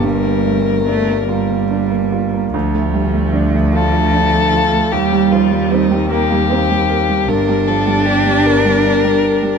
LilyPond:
<<
  \new Staff \with { instrumentName = "Violin" } { \time 6/8 \key g \minor \tempo 4. = 51 bes'2~ bes'16 r8. | r4. a'4. | g'8 f'8 ees'8 g'4. | bes'8 a'8 g'8 bes'4. | }
  \new Staff \with { instrumentName = "Grand piano" } { \time 6/8 \key g \minor g,16 bes16 a16 bes16 d'16 bes16 f'16 bes16 d'16 bes16 f'16 bes16 | d,16 a16 g16 a16 d'16 a16 f'16 a16 d'16 a16 f'16 a16 | ees,16 g16 f16 g16 c'16 g16 bes'16 g16 c'16 g16 bes'16 g16 | g,16 g16 f16 g16 d'16 g16 bes'16 g16 d'16 g16 bes'16 g16 | }
  \new Staff \with { instrumentName = "Cello" } { \clef bass \time 6/8 \key g \minor g4 a8 g4. | f2. | g4. bes8 r4 | d'2. | }
  \new Staff \with { instrumentName = "Double bass" } { \clef bass \time 6/8 \key g \minor g,,2. | d,2. | ees,2. | g,,2. | }
>>